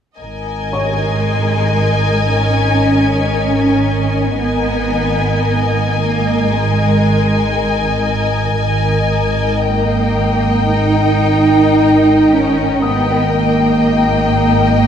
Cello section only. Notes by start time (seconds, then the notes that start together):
0.72 G#3
2.29 C#4
4.40 B3
5.99 A#3
6.51 G#3
9.67 A#3
10.73 D#4
12.30 C#4
12.83 B3
13.37 A#3